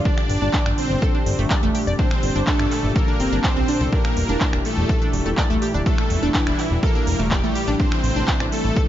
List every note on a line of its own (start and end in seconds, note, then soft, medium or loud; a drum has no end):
0.00 3.89 D3 medium
0.00 3.89 D4 medium
0.05 7.75 A#2 medium
0.05 3.89 G3 medium
0.05 0.68 D4 medium
0.05 0.13 D4 medium
0.05 7.75 G4 medium
0.05 0.68 D5 loud
0.05 kick loud
0.18 finger snap medium
0.29 0.38 G1 medium
0.29 open hi-hat loud
0.42 0.50 G1 medium
0.42 0.49 D4 medium
0.53 0.61 D4 loud
0.53 kick loud
0.53 clap loud
0.66 0.74 G1 medium
0.66 0.73 D4 medium
0.66 finger snap medium
0.78 1.41 C4 medium
0.78 1.41 C5 medium
0.78 open hi-hat loud
0.90 0.98 G1 medium
1.02 1.07 A4 loud
1.02 kick loud
1.15 1.25 D4 medium
1.26 1.34 G1 medium
1.26 open hi-hat loud
1.39 1.46 G1 medium
1.39 1.46 A3 medium
1.50 1.55 D5 loud
1.50 kick loud
1.50 clap loud
1.63 1.70 F1 medium
1.63 1.67 A3 loud
1.75 1.79 G4 medium
1.75 open hi-hat loud
1.87 1.95 F1 medium
1.87 1.94 D5 medium
1.99 2.43 C4 medium
1.99 2.07 D4 medium
1.99 2.43 C5 medium
1.99 kick loud
2.11 finger snap medium
2.23 2.31 G1 medium
2.23 open hi-hat loud
2.35 2.43 G1 medium
2.35 2.43 D4 medium
2.47 2.91 A3 medium
2.47 2.55 D4 loud
2.47 2.91 A4 medium
2.47 kick loud
2.47 clap loud
2.59 2.67 G1 medium
2.59 2.67 D4 medium
2.59 finger snap medium
2.71 clap soft
2.71 open hi-hat loud
2.84 2.91 G1 medium
2.96 3.39 A#3 medium
2.96 3.00 A4 loud
2.96 3.39 A#4 medium
2.96 kick loud
3.08 3.19 D4 medium
3.20 3.28 G1 medium
3.20 3.31 C4 medium
3.20 open hi-hat loud
3.32 3.40 G1 medium
3.32 3.43 D4 medium
3.44 3.88 C4 medium
3.44 3.52 D4 medium
3.44 3.88 C5 loud
3.44 kick loud
3.44 clap loud
3.57 3.64 C2 medium
3.57 3.64 C4 medium
3.68 3.76 D4 medium
3.68 open hi-hat loud
3.81 3.88 C2 medium
3.81 3.85 A4 medium
3.93 8.88 E3 medium
3.93 8.88 G3 medium
3.93 4.56 A#3 medium
3.93 4.00 D4 medium
3.93 8.88 E4 medium
3.93 4.56 A#4 loud
3.93 kick loud
4.05 finger snap medium
4.17 4.25 E1 medium
4.17 open hi-hat loud
4.29 4.37 E1 medium
4.29 4.36 D4 medium
4.41 4.48 D4 loud
4.41 kick loud
4.41 clap loud
4.53 4.61 E1 medium
4.53 4.60 D4 medium
4.53 finger snap medium
4.65 5.28 A3 medium
4.65 5.28 A4 medium
4.65 open hi-hat loud
4.77 4.85 E1 medium
4.89 4.94 A4 loud
4.89 kick loud
5.02 5.12 D4 medium
5.13 5.21 E1 loud
5.13 open hi-hat loud
5.26 5.33 E1 medium
5.26 5.33 A3 medium
5.37 5.42 D5 loud
5.37 kick loud
5.37 clap loud
5.50 5.58 D1 medium
5.50 5.54 A3 loud
5.62 5.66 G4 medium
5.62 open hi-hat loud
5.74 5.82 D1 medium
5.74 5.81 D4 medium
5.86 6.30 A3 medium
5.86 5.94 D4 medium
5.86 6.30 A4 loud
5.86 kick loud
5.98 finger snap medium
6.10 6.18 E1 medium
6.10 open hi-hat loud
6.23 6.30 E1 medium
6.23 6.30 D4 medium
6.34 6.78 E3 medium
6.34 6.42 D4 loud
6.34 6.78 E4 loud
6.34 kick loud
6.34 clap loud
6.47 6.54 E1 medium
6.47 6.54 D4 medium
6.47 finger snap medium
6.58 clap soft
6.58 open hi-hat loud
6.71 6.79 E1 medium
6.83 7.26 A#3 medium
6.83 6.87 A4 loud
6.83 7.27 A#4 medium
6.83 kick loud
6.95 7.06 D4 medium
7.07 7.15 E1 medium
7.07 open hi-hat loud
7.19 7.45 E1 medium
7.19 7.27 A3 medium
7.31 7.75 G3 medium
7.31 7.75 G4 loud
7.31 7.36 D5 loud
7.31 kick loud
7.31 clap loud
7.43 7.51 A#1 medium
7.43 7.48 A3 loud
7.55 7.60 G4 medium
7.55 open hi-hat loud
7.68 7.75 A1 medium
7.68 7.75 D4 medium
7.79 8.88 C3 medium
7.79 8.88 A3 medium
7.79 8.43 C4 medium
7.79 7.87 D4 medium
7.79 8.43 C5 loud
7.79 kick loud
7.92 finger snap medium
8.04 8.12 A1 loud
8.04 open hi-hat loud
8.16 8.24 A1 medium
8.16 8.23 D4 medium
8.28 8.36 D4 loud
8.28 kick loud
8.28 clap loud
8.40 8.48 A1 medium
8.40 8.48 D4 medium
8.40 finger snap medium
8.52 8.88 A3 medium
8.52 8.88 A4 loud
8.52 open hi-hat loud
8.65 8.72 A1 medium
8.76 8.81 A4 loud
8.76 kick loud